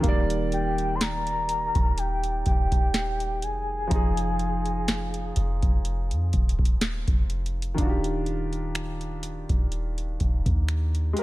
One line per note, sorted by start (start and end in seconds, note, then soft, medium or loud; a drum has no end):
0.00 1.71 D#1 loud
0.00 3.85 D#3 medium
0.00 3.87 A#3 medium
0.00 kick loud
0.00 closed hi-hat medium
0.06 3.88 G3 medium
0.06 3.89 D5 medium
0.30 closed hi-hat medium
0.52 0.97 G5 loud
0.52 closed hi-hat soft
0.78 closed hi-hat soft
0.95 1.03 C6 medium
1.01 2.00 A#5 loud
1.01 snare loud
1.01 closed hi-hat medium
1.27 closed hi-hat medium
1.49 closed hi-hat medium
1.75 2.43 D#1 loud
1.75 kick loud
1.75 closed hi-hat soft
1.98 2.46 G5 loud
1.98 closed hi-hat medium
2.24 closed hi-hat medium
2.46 3.45 D#1 loud
2.46 3.45 G5 loud
2.46 kick medium
2.46 closed hi-hat medium
2.72 kick medium
2.72 closed hi-hat medium
2.94 snare loud
2.94 closed hi-hat medium
3.20 closed hi-hat medium
3.42 3.89 F1 loud
3.42 6.33 G#5 loud
3.42 closed hi-hat medium
3.87 5.32 F1 loud
3.87 7.72 F3 medium
3.87 7.74 D#4 medium
3.87 kick loud
3.87 closed hi-hat medium
3.93 7.75 F4 medium
3.93 7.76 G#4 medium
4.17 closed hi-hat medium
4.39 closed hi-hat medium
4.66 closed hi-hat soft
4.88 snare loud
4.88 closed hi-hat medium
5.14 closed hi-hat medium
5.36 5.62 F1 loud
5.36 closed hi-hat medium
5.62 6.13 F1 loud
5.62 kick loud
5.62 closed hi-hat soft
5.85 closed hi-hat medium
6.11 6.32 F2 loud
6.11 closed hi-hat medium
6.33 7.05 D#1 loud
6.33 kick medium
6.33 closed hi-hat medium
6.49 closed hi-hat medium
6.59 kick medium
6.65 closed hi-hat medium
6.81 snare loud
6.81 closed hi-hat medium
7.07 7.75 F1 loud
7.07 kick loud
7.07 closed hi-hat medium
7.30 closed hi-hat soft
7.30 open hi-hat medium
7.46 closed hi-hat medium
7.62 closed hi-hat medium
7.74 9.46 D#1 loud
7.74 11.11 D#3 medium
7.74 11.12 D4 medium
7.74 kick loud
7.74 closed hi-hat medium
7.80 11.14 F4 medium
7.80 7.87 F#4 medium
7.89 11.14 G4 medium
8.04 closed hi-hat medium
8.26 closed hi-hat soft
8.53 closed hi-hat soft
8.75 finger snap loud
8.75 closed hi-hat medium
9.01 closed hi-hat soft
9.23 closed hi-hat medium
9.49 10.17 D#1 loud
9.49 kick loud
9.49 closed hi-hat soft
9.72 closed hi-hat medium
9.98 closed hi-hat medium
10.20 10.45 D#1 loud
10.20 kick medium
10.20 closed hi-hat soft
10.46 11.14 D#2 loud
10.46 kick medium
10.46 closed hi-hat soft
10.68 finger snap loud
10.68 closed hi-hat medium
10.95 closed hi-hat soft
11.13 11.23 G#3 medium
11.13 11.23 G4 medium
11.13 closed hi-hat medium
11.19 11.23 A#4 medium